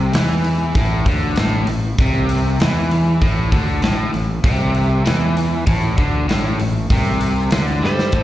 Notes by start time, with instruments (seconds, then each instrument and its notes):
Already playing: overdriven electric guitar C3
0.13 fingered electric bass E2, overdriven electric guitar E3, snare, open hi-hat
0.44 open hi-hat
0.74 fingered electric bass A1, overdriven electric guitar A2, kick, open hi-hat
1.06 fingered electric bass D2, overdriven electric guitar D3, kick, open hi-hat
1.36 fingered electric bass A1, overdriven electric guitar A2, snare, open hi-hat
1.67 fingered electric bass A1, overdriven electric guitar A2, open hi-hat
1.98 fingered electric bass C2, overdriven electric guitar C3, kick, open hi-hat
2.29 open hi-hat
2.60 fingered electric bass E2, overdriven electric guitar E3, snare, open hi-hat
2.91 open hi-hat
3.21 fingered electric bass A1, overdriven electric guitar A2, kick, open hi-hat
3.52 fingered electric bass D2, overdriven electric guitar D3, kick, open hi-hat
3.82 fingered electric bass A1, overdriven electric guitar A2, snare, open hi-hat
4.13 fingered electric bass A1, overdriven electric guitar A2, open hi-hat
4.44 fingered electric bass C2, overdriven electric guitar C3, kick, open hi-hat
4.75 open hi-hat
5.05 fingered electric bass E2, overdriven electric guitar E3, snare, open hi-hat
5.37 open hi-hat
5.67 fingered electric bass A1, overdriven electric guitar A2, kick, open hi-hat
5.98 fingered electric bass D2, overdriven electric guitar D3, kick, open hi-hat
6.29 fingered electric bass A1, overdriven electric guitar A2, snare, open hi-hat
6.60 fingered electric bass A1, overdriven electric guitar A2, open hi-hat
6.90 fingered electric bass C2, overdriven electric guitar C3, kick, open hi-hat
7.21 open hi-hat
7.51 fingered electric bass D2, overdriven electric guitar D3, snare, open hi-hat
7.82 fingered electric bass G2, overdriven electric guitar G3, lead electric guitar A4 C5, snare
7.99 snare
8.12 fingered electric bass A1, overdriven electric guitar A2, kick, closed hi-hat